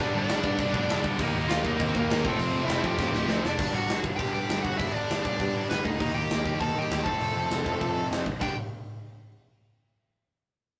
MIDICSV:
0, 0, Header, 1, 7, 480
1, 0, Start_track
1, 0, Time_signature, 4, 2, 24, 8
1, 0, Tempo, 300451
1, 17244, End_track
2, 0, Start_track
2, 0, Title_t, "Lead electric guitar"
2, 0, Program_c, 0, 29
2, 0, Note_on_c, 0, 62, 92
2, 25, Note_on_c, 0, 74, 121
2, 214, Note_off_c, 0, 62, 0
2, 247, Note_on_c, 0, 62, 73
2, 257, Note_off_c, 0, 74, 0
2, 299, Note_on_c, 0, 74, 100
2, 1612, Note_off_c, 0, 62, 0
2, 1638, Note_off_c, 0, 74, 0
2, 2372, Note_on_c, 0, 65, 70
2, 2419, Note_on_c, 0, 77, 88
2, 2602, Note_off_c, 0, 65, 0
2, 2639, Note_on_c, 0, 63, 75
2, 2649, Note_off_c, 0, 77, 0
2, 2681, Note_on_c, 0, 75, 96
2, 2856, Note_off_c, 0, 63, 0
2, 2876, Note_on_c, 0, 60, 79
2, 2878, Note_off_c, 0, 75, 0
2, 2905, Note_on_c, 0, 72, 98
2, 3094, Note_off_c, 0, 60, 0
2, 3153, Note_on_c, 0, 58, 83
2, 3180, Note_off_c, 0, 72, 0
2, 3180, Note_on_c, 0, 70, 108
2, 3576, Note_off_c, 0, 58, 0
2, 3633, Note_on_c, 0, 57, 68
2, 3635, Note_off_c, 0, 70, 0
2, 3643, Note_on_c, 0, 69, 88
2, 3830, Note_off_c, 0, 57, 0
2, 3836, Note_on_c, 0, 60, 83
2, 3843, Note_off_c, 0, 69, 0
2, 3843, Note_on_c, 0, 72, 97
2, 4165, Note_off_c, 0, 60, 0
2, 4200, Note_off_c, 0, 72, 0
2, 4225, Note_on_c, 0, 76, 101
2, 4238, Note_on_c, 0, 64, 79
2, 4546, Note_off_c, 0, 64, 0
2, 4559, Note_on_c, 0, 79, 110
2, 4573, Note_off_c, 0, 76, 0
2, 4574, Note_on_c, 0, 67, 90
2, 5311, Note_on_c, 0, 60, 72
2, 5316, Note_on_c, 0, 72, 74
2, 5445, Note_off_c, 0, 79, 0
2, 5452, Note_off_c, 0, 67, 0
2, 5511, Note_off_c, 0, 60, 0
2, 5532, Note_off_c, 0, 72, 0
2, 5536, Note_on_c, 0, 62, 76
2, 5546, Note_on_c, 0, 74, 91
2, 5966, Note_off_c, 0, 62, 0
2, 5985, Note_on_c, 0, 78, 93
2, 6004, Note_on_c, 0, 66, 76
2, 6016, Note_off_c, 0, 74, 0
2, 6429, Note_off_c, 0, 78, 0
2, 6439, Note_off_c, 0, 66, 0
2, 6651, Note_on_c, 0, 79, 97
2, 6684, Note_on_c, 0, 67, 74
2, 6900, Note_off_c, 0, 79, 0
2, 6915, Note_off_c, 0, 67, 0
2, 6919, Note_on_c, 0, 79, 94
2, 6935, Note_on_c, 0, 67, 73
2, 7381, Note_off_c, 0, 79, 0
2, 7384, Note_off_c, 0, 67, 0
2, 7387, Note_on_c, 0, 78, 92
2, 7423, Note_on_c, 0, 66, 66
2, 7620, Note_off_c, 0, 78, 0
2, 7626, Note_on_c, 0, 76, 98
2, 7645, Note_off_c, 0, 66, 0
2, 7647, Note_on_c, 0, 64, 75
2, 7862, Note_on_c, 0, 74, 93
2, 7877, Note_off_c, 0, 64, 0
2, 7891, Note_off_c, 0, 76, 0
2, 7919, Note_on_c, 0, 62, 75
2, 8336, Note_off_c, 0, 74, 0
2, 8355, Note_on_c, 0, 74, 93
2, 8358, Note_off_c, 0, 62, 0
2, 8383, Note_on_c, 0, 62, 72
2, 9038, Note_off_c, 0, 74, 0
2, 9053, Note_off_c, 0, 62, 0
2, 9101, Note_on_c, 0, 71, 96
2, 9145, Note_on_c, 0, 59, 73
2, 9325, Note_off_c, 0, 71, 0
2, 9344, Note_on_c, 0, 75, 98
2, 9349, Note_off_c, 0, 59, 0
2, 9378, Note_on_c, 0, 63, 75
2, 9809, Note_off_c, 0, 63, 0
2, 9819, Note_on_c, 0, 79, 98
2, 9839, Note_off_c, 0, 75, 0
2, 9868, Note_on_c, 0, 67, 82
2, 10518, Note_off_c, 0, 67, 0
2, 10543, Note_on_c, 0, 81, 102
2, 10565, Note_off_c, 0, 79, 0
2, 10589, Note_on_c, 0, 69, 75
2, 10839, Note_on_c, 0, 79, 101
2, 10867, Note_off_c, 0, 69, 0
2, 10874, Note_off_c, 0, 81, 0
2, 10896, Note_on_c, 0, 67, 81
2, 11241, Note_on_c, 0, 81, 99
2, 11255, Note_off_c, 0, 67, 0
2, 11266, Note_off_c, 0, 79, 0
2, 11292, Note_on_c, 0, 69, 75
2, 12874, Note_off_c, 0, 81, 0
2, 12900, Note_off_c, 0, 69, 0
2, 13451, Note_on_c, 0, 79, 80
2, 13666, Note_off_c, 0, 79, 0
2, 17244, End_track
3, 0, Start_track
3, 0, Title_t, "Distorted electric guitar"
3, 0, Program_c, 1, 30
3, 0, Note_on_c, 1, 43, 93
3, 10, Note_on_c, 1, 50, 98
3, 15, Note_on_c, 1, 55, 103
3, 20, Note_on_c, 1, 62, 105
3, 21, Note_on_c, 1, 59, 101
3, 1150, Note_off_c, 1, 59, 0
3, 1151, Note_off_c, 1, 62, 0
3, 1163, Note_off_c, 1, 55, 0
3, 1169, Note_on_c, 1, 59, 98
3, 1170, Note_on_c, 1, 62, 102
3, 1176, Note_off_c, 1, 43, 0
3, 1179, Note_off_c, 1, 50, 0
3, 1183, Note_on_c, 1, 55, 83
3, 1198, Note_on_c, 1, 50, 83
3, 1205, Note_on_c, 1, 43, 76
3, 1398, Note_off_c, 1, 43, 0
3, 1406, Note_off_c, 1, 59, 0
3, 1406, Note_off_c, 1, 62, 0
3, 1412, Note_off_c, 1, 55, 0
3, 1413, Note_off_c, 1, 50, 0
3, 1418, Note_on_c, 1, 43, 93
3, 1432, Note_on_c, 1, 50, 93
3, 1442, Note_on_c, 1, 55, 91
3, 1447, Note_on_c, 1, 59, 91
3, 1451, Note_on_c, 1, 62, 95
3, 1888, Note_off_c, 1, 43, 0
3, 1889, Note_off_c, 1, 55, 0
3, 1892, Note_off_c, 1, 50, 0
3, 1898, Note_on_c, 1, 51, 94
3, 1900, Note_off_c, 1, 59, 0
3, 1905, Note_off_c, 1, 62, 0
3, 1907, Note_on_c, 1, 58, 111
3, 1908, Note_on_c, 1, 55, 107
3, 1922, Note_on_c, 1, 63, 112
3, 3084, Note_off_c, 1, 63, 0
3, 3086, Note_off_c, 1, 51, 0
3, 3090, Note_off_c, 1, 55, 0
3, 3090, Note_off_c, 1, 58, 0
3, 3103, Note_on_c, 1, 63, 88
3, 3118, Note_on_c, 1, 58, 98
3, 3122, Note_on_c, 1, 55, 94
3, 3143, Note_on_c, 1, 51, 78
3, 3329, Note_off_c, 1, 63, 0
3, 3335, Note_off_c, 1, 55, 0
3, 3336, Note_off_c, 1, 58, 0
3, 3337, Note_off_c, 1, 51, 0
3, 3354, Note_on_c, 1, 55, 92
3, 3356, Note_on_c, 1, 51, 81
3, 3369, Note_on_c, 1, 63, 88
3, 3372, Note_on_c, 1, 58, 87
3, 3564, Note_on_c, 1, 41, 92
3, 3567, Note_off_c, 1, 51, 0
3, 3573, Note_on_c, 1, 48, 99
3, 3574, Note_off_c, 1, 55, 0
3, 3582, Note_off_c, 1, 63, 0
3, 3583, Note_off_c, 1, 58, 0
3, 3591, Note_on_c, 1, 53, 109
3, 3592, Note_on_c, 1, 57, 100
3, 3609, Note_on_c, 1, 60, 123
3, 4742, Note_off_c, 1, 41, 0
3, 4744, Note_off_c, 1, 48, 0
3, 4758, Note_off_c, 1, 57, 0
3, 4760, Note_off_c, 1, 53, 0
3, 4761, Note_on_c, 1, 41, 74
3, 4763, Note_off_c, 1, 60, 0
3, 4764, Note_on_c, 1, 48, 79
3, 4777, Note_on_c, 1, 57, 82
3, 4779, Note_on_c, 1, 53, 83
3, 4783, Note_on_c, 1, 60, 83
3, 4963, Note_off_c, 1, 60, 0
3, 4980, Note_off_c, 1, 57, 0
3, 4982, Note_on_c, 1, 60, 102
3, 4992, Note_off_c, 1, 53, 0
3, 4996, Note_off_c, 1, 41, 0
3, 4998, Note_off_c, 1, 48, 0
3, 4999, Note_on_c, 1, 57, 99
3, 5011, Note_on_c, 1, 53, 90
3, 5016, Note_on_c, 1, 48, 78
3, 5023, Note_on_c, 1, 41, 87
3, 5467, Note_off_c, 1, 60, 0
3, 5475, Note_off_c, 1, 57, 0
3, 5481, Note_off_c, 1, 53, 0
3, 5483, Note_off_c, 1, 48, 0
3, 5487, Note_off_c, 1, 41, 0
3, 5713, Note_on_c, 1, 43, 92
3, 5716, Note_on_c, 1, 50, 96
3, 5737, Note_on_c, 1, 55, 97
3, 5742, Note_on_c, 1, 59, 97
3, 5752, Note_on_c, 1, 62, 87
3, 7633, Note_off_c, 1, 43, 0
3, 7634, Note_off_c, 1, 50, 0
3, 7647, Note_off_c, 1, 59, 0
3, 7650, Note_on_c, 1, 43, 79
3, 7652, Note_off_c, 1, 62, 0
3, 7663, Note_on_c, 1, 50, 97
3, 7664, Note_off_c, 1, 55, 0
3, 7671, Note_on_c, 1, 55, 91
3, 7688, Note_on_c, 1, 59, 89
3, 7699, Note_on_c, 1, 62, 105
3, 9564, Note_off_c, 1, 43, 0
3, 9570, Note_off_c, 1, 50, 0
3, 9574, Note_off_c, 1, 55, 0
3, 9583, Note_off_c, 1, 59, 0
3, 9588, Note_off_c, 1, 62, 0
3, 9592, Note_on_c, 1, 51, 84
3, 9596, Note_on_c, 1, 55, 90
3, 9608, Note_on_c, 1, 58, 97
3, 9620, Note_on_c, 1, 63, 100
3, 11249, Note_on_c, 1, 41, 80
3, 11257, Note_off_c, 1, 51, 0
3, 11259, Note_off_c, 1, 55, 0
3, 11264, Note_on_c, 1, 48, 86
3, 11265, Note_off_c, 1, 58, 0
3, 11265, Note_on_c, 1, 53, 86
3, 11271, Note_off_c, 1, 63, 0
3, 11276, Note_on_c, 1, 57, 89
3, 11282, Note_on_c, 1, 60, 108
3, 13168, Note_off_c, 1, 41, 0
3, 13175, Note_off_c, 1, 48, 0
3, 13176, Note_off_c, 1, 53, 0
3, 13182, Note_off_c, 1, 57, 0
3, 13184, Note_off_c, 1, 60, 0
3, 13412, Note_on_c, 1, 43, 87
3, 13424, Note_on_c, 1, 50, 91
3, 13431, Note_on_c, 1, 62, 94
3, 13433, Note_on_c, 1, 59, 94
3, 13434, Note_on_c, 1, 55, 90
3, 13615, Note_off_c, 1, 43, 0
3, 13620, Note_off_c, 1, 50, 0
3, 13624, Note_off_c, 1, 62, 0
3, 13625, Note_off_c, 1, 59, 0
3, 13626, Note_off_c, 1, 55, 0
3, 17244, End_track
4, 0, Start_track
4, 0, Title_t, "Distorted electric guitar"
4, 0, Program_c, 2, 30
4, 685, Note_on_c, 2, 62, 88
4, 699, Note_on_c, 2, 59, 77
4, 711, Note_on_c, 2, 55, 74
4, 728, Note_on_c, 2, 50, 71
4, 735, Note_on_c, 2, 43, 73
4, 1372, Note_off_c, 2, 43, 0
4, 1392, Note_off_c, 2, 50, 0
4, 1400, Note_off_c, 2, 55, 0
4, 1403, Note_off_c, 2, 62, 0
4, 1410, Note_off_c, 2, 59, 0
4, 2622, Note_on_c, 2, 63, 89
4, 2645, Note_on_c, 2, 58, 71
4, 2672, Note_on_c, 2, 55, 78
4, 2684, Note_on_c, 2, 51, 68
4, 3328, Note_off_c, 2, 63, 0
4, 3334, Note_off_c, 2, 51, 0
4, 3339, Note_off_c, 2, 58, 0
4, 3353, Note_off_c, 2, 55, 0
4, 4289, Note_on_c, 2, 41, 72
4, 4311, Note_on_c, 2, 48, 80
4, 4325, Note_on_c, 2, 53, 81
4, 4346, Note_on_c, 2, 57, 78
4, 4350, Note_on_c, 2, 60, 93
4, 4975, Note_off_c, 2, 60, 0
4, 4998, Note_off_c, 2, 57, 0
4, 5000, Note_off_c, 2, 41, 0
4, 5011, Note_off_c, 2, 48, 0
4, 5011, Note_off_c, 2, 53, 0
4, 17244, End_track
5, 0, Start_track
5, 0, Title_t, "Overdriven electric guitar"
5, 0, Program_c, 3, 29
5, 6691, Note_on_c, 3, 43, 69
5, 6718, Note_on_c, 3, 50, 77
5, 6731, Note_on_c, 3, 55, 88
5, 7637, Note_off_c, 3, 43, 0
5, 7648, Note_off_c, 3, 50, 0
5, 7687, Note_off_c, 3, 55, 0
5, 8630, Note_on_c, 3, 43, 67
5, 8649, Note_on_c, 3, 50, 80
5, 8666, Note_on_c, 3, 55, 82
5, 9563, Note_off_c, 3, 50, 0
5, 9573, Note_off_c, 3, 43, 0
5, 9591, Note_off_c, 3, 55, 0
5, 10544, Note_on_c, 3, 51, 74
5, 10565, Note_on_c, 3, 58, 69
5, 10586, Note_on_c, 3, 63, 80
5, 11252, Note_off_c, 3, 51, 0
5, 11262, Note_off_c, 3, 58, 0
5, 11273, Note_off_c, 3, 63, 0
5, 12220, Note_on_c, 3, 53, 74
5, 12247, Note_on_c, 3, 48, 63
5, 12269, Note_on_c, 3, 41, 62
5, 13172, Note_off_c, 3, 53, 0
5, 13186, Note_off_c, 3, 48, 0
5, 13197, Note_off_c, 3, 41, 0
5, 17244, End_track
6, 0, Start_track
6, 0, Title_t, "Picked electric bass"
6, 0, Program_c, 4, 34
6, 0, Note_on_c, 4, 31, 97
6, 193, Note_off_c, 4, 31, 0
6, 247, Note_on_c, 4, 31, 97
6, 447, Note_off_c, 4, 31, 0
6, 480, Note_on_c, 4, 31, 89
6, 683, Note_off_c, 4, 31, 0
6, 707, Note_on_c, 4, 43, 103
6, 915, Note_off_c, 4, 43, 0
6, 933, Note_on_c, 4, 31, 95
6, 1147, Note_off_c, 4, 31, 0
6, 1168, Note_on_c, 4, 29, 87
6, 1384, Note_off_c, 4, 29, 0
6, 1461, Note_on_c, 4, 29, 98
6, 1653, Note_off_c, 4, 29, 0
6, 1663, Note_on_c, 4, 31, 97
6, 1872, Note_off_c, 4, 31, 0
6, 1895, Note_on_c, 4, 39, 91
6, 2106, Note_off_c, 4, 39, 0
6, 2158, Note_on_c, 4, 39, 91
6, 2359, Note_off_c, 4, 39, 0
6, 2405, Note_on_c, 4, 39, 96
6, 2603, Note_off_c, 4, 39, 0
6, 2626, Note_on_c, 4, 39, 87
6, 2832, Note_off_c, 4, 39, 0
6, 2867, Note_on_c, 4, 39, 88
6, 3072, Note_off_c, 4, 39, 0
6, 3116, Note_on_c, 4, 39, 87
6, 3317, Note_off_c, 4, 39, 0
6, 3349, Note_on_c, 4, 39, 91
6, 3553, Note_off_c, 4, 39, 0
6, 3588, Note_on_c, 4, 29, 98
6, 3792, Note_off_c, 4, 29, 0
6, 3812, Note_on_c, 4, 29, 95
6, 4022, Note_off_c, 4, 29, 0
6, 4056, Note_on_c, 4, 29, 89
6, 4264, Note_off_c, 4, 29, 0
6, 4285, Note_on_c, 4, 29, 91
6, 4498, Note_off_c, 4, 29, 0
6, 4524, Note_on_c, 4, 41, 91
6, 4737, Note_off_c, 4, 41, 0
6, 4770, Note_on_c, 4, 29, 89
6, 4968, Note_off_c, 4, 29, 0
6, 4978, Note_on_c, 4, 38, 92
6, 5202, Note_off_c, 4, 38, 0
6, 5230, Note_on_c, 4, 38, 90
6, 5449, Note_off_c, 4, 38, 0
6, 5485, Note_on_c, 4, 29, 90
6, 5697, Note_off_c, 4, 29, 0
6, 5741, Note_on_c, 4, 31, 84
6, 5903, Note_off_c, 4, 31, 0
6, 5955, Note_on_c, 4, 31, 85
6, 6126, Note_off_c, 4, 31, 0
6, 6215, Note_on_c, 4, 31, 81
6, 6379, Note_off_c, 4, 31, 0
6, 6449, Note_on_c, 4, 31, 84
6, 6615, Note_off_c, 4, 31, 0
6, 6698, Note_on_c, 4, 31, 76
6, 6861, Note_off_c, 4, 31, 0
6, 6934, Note_on_c, 4, 43, 80
6, 7098, Note_off_c, 4, 43, 0
6, 7176, Note_on_c, 4, 31, 87
6, 7340, Note_off_c, 4, 31, 0
6, 7423, Note_on_c, 4, 31, 78
6, 7585, Note_off_c, 4, 31, 0
6, 7660, Note_on_c, 4, 31, 82
6, 7823, Note_off_c, 4, 31, 0
6, 7899, Note_on_c, 4, 31, 88
6, 8062, Note_off_c, 4, 31, 0
6, 8156, Note_on_c, 4, 31, 88
6, 8314, Note_off_c, 4, 31, 0
6, 8392, Note_on_c, 4, 31, 84
6, 8551, Note_off_c, 4, 31, 0
6, 8634, Note_on_c, 4, 43, 80
6, 8956, Note_off_c, 4, 43, 0
6, 9128, Note_on_c, 4, 31, 82
6, 9282, Note_off_c, 4, 31, 0
6, 9343, Note_on_c, 4, 38, 89
6, 9506, Note_off_c, 4, 38, 0
6, 9598, Note_on_c, 4, 39, 87
6, 9756, Note_off_c, 4, 39, 0
6, 9823, Note_on_c, 4, 39, 87
6, 9986, Note_off_c, 4, 39, 0
6, 10080, Note_on_c, 4, 39, 85
6, 10238, Note_off_c, 4, 39, 0
6, 10305, Note_on_c, 4, 39, 87
6, 10468, Note_off_c, 4, 39, 0
6, 10548, Note_on_c, 4, 39, 76
6, 10710, Note_off_c, 4, 39, 0
6, 10797, Note_on_c, 4, 51, 76
6, 10956, Note_off_c, 4, 51, 0
6, 11019, Note_on_c, 4, 39, 79
6, 11184, Note_off_c, 4, 39, 0
6, 11273, Note_on_c, 4, 29, 84
6, 11434, Note_off_c, 4, 29, 0
6, 11510, Note_on_c, 4, 29, 75
6, 11672, Note_off_c, 4, 29, 0
6, 11747, Note_on_c, 4, 29, 82
6, 11910, Note_off_c, 4, 29, 0
6, 11991, Note_on_c, 4, 29, 79
6, 12153, Note_off_c, 4, 29, 0
6, 12237, Note_on_c, 4, 29, 85
6, 12397, Note_off_c, 4, 29, 0
6, 12492, Note_on_c, 4, 41, 77
6, 12810, Note_off_c, 4, 41, 0
6, 12943, Note_on_c, 4, 29, 85
6, 13109, Note_off_c, 4, 29, 0
6, 13193, Note_on_c, 4, 30, 81
6, 13355, Note_off_c, 4, 30, 0
6, 13446, Note_on_c, 4, 31, 82
6, 13663, Note_off_c, 4, 31, 0
6, 17244, End_track
7, 0, Start_track
7, 0, Title_t, "Drums"
7, 455, Note_on_c, 9, 49, 64
7, 474, Note_on_c, 9, 38, 120
7, 615, Note_off_c, 9, 49, 0
7, 634, Note_off_c, 9, 38, 0
7, 698, Note_on_c, 9, 36, 104
7, 858, Note_off_c, 9, 36, 0
7, 936, Note_on_c, 9, 49, 69
7, 938, Note_on_c, 9, 36, 99
7, 1095, Note_off_c, 9, 49, 0
7, 1098, Note_off_c, 9, 36, 0
7, 1183, Note_on_c, 9, 36, 89
7, 1342, Note_off_c, 9, 36, 0
7, 1424, Note_on_c, 9, 49, 64
7, 1443, Note_on_c, 9, 38, 109
7, 1583, Note_off_c, 9, 49, 0
7, 1603, Note_off_c, 9, 38, 0
7, 1665, Note_on_c, 9, 36, 94
7, 1825, Note_off_c, 9, 36, 0
7, 1899, Note_on_c, 9, 49, 79
7, 1905, Note_on_c, 9, 36, 110
7, 2058, Note_off_c, 9, 49, 0
7, 2065, Note_off_c, 9, 36, 0
7, 2387, Note_on_c, 9, 49, 75
7, 2407, Note_on_c, 9, 38, 118
7, 2547, Note_off_c, 9, 49, 0
7, 2566, Note_off_c, 9, 38, 0
7, 2630, Note_on_c, 9, 36, 97
7, 2790, Note_off_c, 9, 36, 0
7, 2870, Note_on_c, 9, 49, 63
7, 2875, Note_on_c, 9, 36, 100
7, 3030, Note_off_c, 9, 49, 0
7, 3034, Note_off_c, 9, 36, 0
7, 3113, Note_on_c, 9, 36, 87
7, 3273, Note_off_c, 9, 36, 0
7, 3358, Note_on_c, 9, 49, 66
7, 3377, Note_on_c, 9, 38, 114
7, 3518, Note_off_c, 9, 49, 0
7, 3537, Note_off_c, 9, 38, 0
7, 3590, Note_on_c, 9, 36, 111
7, 3750, Note_off_c, 9, 36, 0
7, 3823, Note_on_c, 9, 49, 74
7, 3982, Note_off_c, 9, 49, 0
7, 4292, Note_on_c, 9, 49, 61
7, 4311, Note_on_c, 9, 38, 116
7, 4452, Note_off_c, 9, 49, 0
7, 4471, Note_off_c, 9, 38, 0
7, 4536, Note_on_c, 9, 36, 95
7, 4696, Note_off_c, 9, 36, 0
7, 4771, Note_on_c, 9, 36, 108
7, 4776, Note_on_c, 9, 38, 65
7, 4931, Note_off_c, 9, 36, 0
7, 4935, Note_off_c, 9, 38, 0
7, 5020, Note_on_c, 9, 38, 70
7, 5179, Note_off_c, 9, 38, 0
7, 5252, Note_on_c, 9, 38, 97
7, 5412, Note_off_c, 9, 38, 0
7, 5512, Note_on_c, 9, 38, 100
7, 5672, Note_off_c, 9, 38, 0
7, 5733, Note_on_c, 9, 36, 117
7, 5733, Note_on_c, 9, 57, 107
7, 5893, Note_off_c, 9, 36, 0
7, 5893, Note_off_c, 9, 57, 0
7, 6214, Note_on_c, 9, 46, 57
7, 6233, Note_on_c, 9, 38, 102
7, 6374, Note_off_c, 9, 46, 0
7, 6393, Note_off_c, 9, 38, 0
7, 6454, Note_on_c, 9, 36, 87
7, 6614, Note_off_c, 9, 36, 0
7, 6696, Note_on_c, 9, 36, 91
7, 6697, Note_on_c, 9, 46, 53
7, 6856, Note_off_c, 9, 36, 0
7, 6857, Note_off_c, 9, 46, 0
7, 7172, Note_on_c, 9, 46, 50
7, 7191, Note_on_c, 9, 38, 98
7, 7332, Note_off_c, 9, 46, 0
7, 7351, Note_off_c, 9, 38, 0
7, 7423, Note_on_c, 9, 36, 79
7, 7583, Note_off_c, 9, 36, 0
7, 7654, Note_on_c, 9, 46, 58
7, 7662, Note_on_c, 9, 36, 101
7, 7814, Note_off_c, 9, 46, 0
7, 7822, Note_off_c, 9, 36, 0
7, 8143, Note_on_c, 9, 46, 49
7, 8162, Note_on_c, 9, 38, 100
7, 8302, Note_off_c, 9, 46, 0
7, 8322, Note_off_c, 9, 38, 0
7, 8389, Note_on_c, 9, 36, 86
7, 8549, Note_off_c, 9, 36, 0
7, 8614, Note_on_c, 9, 46, 52
7, 8626, Note_on_c, 9, 36, 85
7, 8774, Note_off_c, 9, 46, 0
7, 8786, Note_off_c, 9, 36, 0
7, 9102, Note_on_c, 9, 46, 54
7, 9121, Note_on_c, 9, 38, 97
7, 9262, Note_off_c, 9, 46, 0
7, 9281, Note_off_c, 9, 38, 0
7, 9351, Note_on_c, 9, 36, 77
7, 9510, Note_off_c, 9, 36, 0
7, 9590, Note_on_c, 9, 46, 61
7, 9592, Note_on_c, 9, 36, 101
7, 9750, Note_off_c, 9, 46, 0
7, 9751, Note_off_c, 9, 36, 0
7, 10063, Note_on_c, 9, 46, 53
7, 10083, Note_on_c, 9, 38, 104
7, 10223, Note_off_c, 9, 46, 0
7, 10242, Note_off_c, 9, 38, 0
7, 10314, Note_on_c, 9, 36, 84
7, 10474, Note_off_c, 9, 36, 0
7, 10541, Note_on_c, 9, 46, 55
7, 10553, Note_on_c, 9, 36, 86
7, 10701, Note_off_c, 9, 46, 0
7, 10713, Note_off_c, 9, 36, 0
7, 11031, Note_on_c, 9, 46, 52
7, 11050, Note_on_c, 9, 38, 101
7, 11191, Note_off_c, 9, 46, 0
7, 11210, Note_off_c, 9, 38, 0
7, 11276, Note_on_c, 9, 36, 92
7, 11436, Note_off_c, 9, 36, 0
7, 11507, Note_on_c, 9, 46, 53
7, 11667, Note_off_c, 9, 46, 0
7, 11987, Note_on_c, 9, 46, 51
7, 12006, Note_on_c, 9, 38, 98
7, 12146, Note_off_c, 9, 46, 0
7, 12166, Note_off_c, 9, 38, 0
7, 12239, Note_on_c, 9, 36, 86
7, 12399, Note_off_c, 9, 36, 0
7, 12480, Note_on_c, 9, 46, 51
7, 12481, Note_on_c, 9, 36, 78
7, 12640, Note_off_c, 9, 46, 0
7, 12641, Note_off_c, 9, 36, 0
7, 12966, Note_on_c, 9, 46, 44
7, 12985, Note_on_c, 9, 38, 97
7, 13126, Note_off_c, 9, 46, 0
7, 13145, Note_off_c, 9, 38, 0
7, 13200, Note_on_c, 9, 36, 77
7, 13359, Note_off_c, 9, 36, 0
7, 13441, Note_on_c, 9, 36, 99
7, 13443, Note_on_c, 9, 57, 85
7, 13601, Note_off_c, 9, 36, 0
7, 13603, Note_off_c, 9, 57, 0
7, 17244, End_track
0, 0, End_of_file